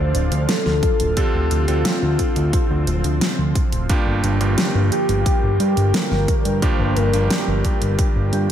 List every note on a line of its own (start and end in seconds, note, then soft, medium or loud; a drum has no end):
0.00 0.13 D2 medium
0.00 3.86 C3 medium
0.00 1.13 D3 medium
0.00 8.52 F3 medium
0.00 1.13 C4 medium
0.00 1.13 D4 medium
0.00 1.14 D4 medium
0.00 1.13 F4 medium
0.00 3.86 F4 loud
0.00 1.13 A4 medium
0.00 0.50 C5 loud
0.15 0.30 D1 medium
0.15 closed hi-hat medium
0.32 0.47 D2 medium
0.32 closed hi-hat medium
0.48 1.18 A4 loud
0.48 snare loud
0.48 closed hi-hat medium
0.66 0.81 D2 medium
0.66 snare soft
0.83 kick loud
0.83 closed hi-hat medium
1.00 1.16 D1 medium
1.00 closed hi-hat medium
1.17 1.64 D3 medium
1.17 1.64 C4 medium
1.17 3.87 C4 medium
1.17 1.64 D4 medium
1.17 1.64 F4 medium
1.17 1.86 G4 loud
1.17 1.64 A4 loud
1.17 kick loud
1.17 closed hi-hat loud
1.34 1.50 D2 medium
1.51 1.67 D2 medium
1.51 closed hi-hat medium
1.68 1.84 D2 medium
1.68 3.85 D3 medium
1.68 3.85 C4 medium
1.68 3.85 D4 medium
1.68 3.85 F4 medium
1.68 3.85 A4 medium
1.68 closed hi-hat medium
1.85 3.55 F4 loud
1.85 snare loud
1.85 closed hi-hat loud
2.02 2.18 D2 medium
2.19 kick medium
2.19 closed hi-hat medium
2.36 2.52 D2 medium
2.36 closed hi-hat medium
2.53 kick loud
2.53 closed hi-hat medium
2.70 2.86 D2 medium
2.87 3.03 D1 medium
2.87 closed hi-hat medium
3.04 3.20 D2 medium
3.04 closed hi-hat medium
3.21 snare loud
3.21 closed hi-hat medium
3.38 3.54 D2 medium
3.55 kick loud
3.55 closed hi-hat medium
3.72 3.88 D1 medium
3.72 closed hi-hat medium
3.90 4.37 G2 medium
3.90 8.52 D3 medium
3.90 8.52 G3 medium
3.90 4.37 A#3 medium
3.90 8.52 A#3 medium
3.90 4.37 D4 medium
3.90 4.37 F4 medium
3.90 4.37 G4 medium
3.90 8.52 G4 loud
3.90 kick loud
3.90 closed hi-hat loud
4.06 4.22 G1 medium
4.24 4.39 G1 medium
4.24 closed hi-hat medium
4.41 4.56 G1 medium
4.41 6.58 G2 medium
4.41 6.58 A#3 medium
4.41 6.58 D4 medium
4.41 6.58 F4 medium
4.41 6.58 G4 medium
4.41 closed hi-hat medium
4.58 snare loud
4.58 closed hi-hat medium
4.75 4.90 G1 medium
4.92 5.95 G4 loud
4.92 closed hi-hat medium
5.09 5.25 G1 medium
5.09 closed hi-hat medium
5.26 kick loud
5.26 closed hi-hat medium
5.43 5.59 G1 medium
5.60 5.76 G2 loud
5.60 closed hi-hat medium
5.77 5.93 G1 medium
5.77 closed hi-hat medium
5.94 6.64 A#4 loud
5.94 snare loud
5.94 closed hi-hat medium
6.11 6.27 G1 medium
6.11 snare soft
6.28 kick loud
6.28 closed hi-hat medium
6.45 6.61 G2 medium
6.45 closed hi-hat medium
6.62 7.09 G2 medium
6.62 7.09 A#3 medium
6.62 7.09 D4 medium
6.62 7.09 F4 medium
6.62 7.09 G4 loud
6.62 6.98 C5 loud
6.62 kick loud
6.62 closed hi-hat medium
6.79 6.95 G1 medium
6.96 7.12 G1 loud
6.96 7.65 A#4 loud
6.96 closed hi-hat medium
7.13 7.29 G1 medium
7.13 8.52 G2 medium
7.13 8.52 A#3 medium
7.13 8.52 D4 medium
7.13 8.52 F4 medium
7.13 8.52 G4 medium
7.13 closed hi-hat medium
7.30 snare loud
7.30 closed hi-hat medium
7.48 7.63 G1 medium
7.65 kick medium
7.65 closed hi-hat medium
7.82 7.97 G1 medium
7.82 closed hi-hat medium
7.99 kick loud
7.99 closed hi-hat medium
8.16 8.31 G1 medium
8.33 8.48 G2 medium
8.33 closed hi-hat medium